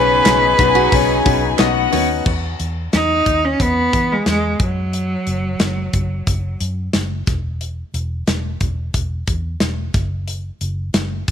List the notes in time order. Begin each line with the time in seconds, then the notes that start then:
Already playing: B1 B2 C#3 F#3 B3 C#4 D#4 F#4 G#4 B4 C#5 G#5
0.25 B1 B3 C#4 D#4 F#4 C#5, snare, clap, hi-hat pedal, open hi-hat
0.58 B1 B3 C#4 D#4 F#4 B4, kick, hi-hat pedal, open hi-hat
0.75 F#4
0.92 B1 B3 C#4 D#4 F#4 C#5, kick, hi-hat pedal, open hi-hat
1.25 B1 B3 C#4 D#4 F#4 C#5, kick, hi-hat pedal, open hi-hat
1.58 B1 B3 C#4 D#4 F#4 D#5 F#5, snare, clap, hi-hat pedal, open hi-hat
1.91 D#2 B3 C#4 D#4 F#4 C#5, hi-hat pedal, open hi-hat
2.26 E2, kick, crash
2.60 E2, closed hi-hat
2.93 E2 D#4, snare, closed hi-hat
3.26 D#2, kick, closed hi-hat
3.44 C#4
3.60 E2 B3, kick, closed hi-hat
3.93 E3, kick, closed hi-hat
4.12 G#3
4.26 E2 G#3, snare, closed hi-hat
4.60 F#2 F#3, kick, closed hi-hat
4.93 closed hi-hat
5.27 F#1, closed hi-hat
5.60 F#1, snare, closed hi-hat
5.93 F#1, kick, closed hi-hat
6.27 F#1, kick, closed hi-hat
6.60 F#2, closed hi-hat
6.93 F#1, snare, closed hi-hat
7.27 E1, kick, snare, closed hi-hat
7.61 closed hi-hat
7.94 E1, closed hi-hat
8.27 E1, snare, closed hi-hat
8.61 E1, kick, closed hi-hat
8.94 E1, kick, closed hi-hat
9.27 E2, kick, closed hi-hat
9.60 E1, snare, closed hi-hat
9.94 F#1, kick, snare, closed hi-hat
10.28 closed hi-hat
10.61 F#1, closed hi-hat
10.94 F#1, snare, closed hi-hat
11.28 F#1, kick, closed hi-hat